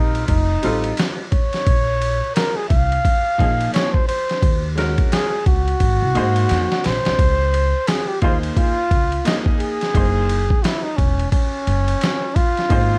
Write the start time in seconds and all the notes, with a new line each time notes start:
Already playing: A#1 G3 C4 D#4 F4 A#4
0.15 ride
0.28 F1 D#4, kick, ride
0.62 A1 G3 C4 F4 A4, ride
0.84 ride
0.97 snare, hi-hat pedal, ride
1.31 C#5, kick, ride
1.53 snare, ride
1.66 A#1, kick, ride
2.02 ride
2.35 A#4, snare, hi-hat pedal, ride
2.56 G#4
2.69 C2 F5, kick, ride
2.92 ride
3.05 kick, ride
3.38 A#1 F3 A#3 D#4 G#4, kick, ride
3.60 ride
3.74 C#5, snare, hi-hat pedal, ride
3.93 C5, kick
4.08 C5, ride
4.29 snare, ride
4.43 D#2, kick, ride
4.75 G#3 C#4 F#4 A#4, snare, ride
4.98 kick, ride
5.12 G#4, snare, hi-hat pedal, ride
5.46 C#2 F#4, kick, ride
5.68 ride
5.80 G#1, kick, ride
6.02 C2
6.15 G#2 A#3 D#4 G#4 C5, ride
6.36 ride
6.49 F2, snare, hi-hat pedal, ride
6.72 snare
6.84 A#1 C5, snare, ride
7.05 C2, snare, ride
7.19 C#2, kick, ride
7.54 ride
7.87 G#4, snare, hi-hat pedal, ride
8.08 G4
8.22 D#2 A#3 D#4 F4 G#4 C5, kick, ride
8.43 ride
8.57 F4, kick, ride
8.91 C#2, kick, ride
9.12 ride
9.25 A#3 D#4 G#4 D#5, snare, hi-hat pedal, ride
9.46 kick
9.59 G#4, ride
9.81 snare, ride
9.94 F#1 A#3 D#4 G#4 C5, kick, ride
10.29 ride
10.50 kick
10.63 E4, snare, hi-hat pedal, ride
10.83 D#4
10.97 E1 C#4, kick, ride
11.19 ride
11.32 C#4, kick, ride
11.67 F#1, ride
11.88 ride
12.01 snare, hi-hat pedal, ride
12.36 F4, kick, ride
12.57 snare, ride
12.69 G#1 A#3 D#4 G#4 C5, kick, ride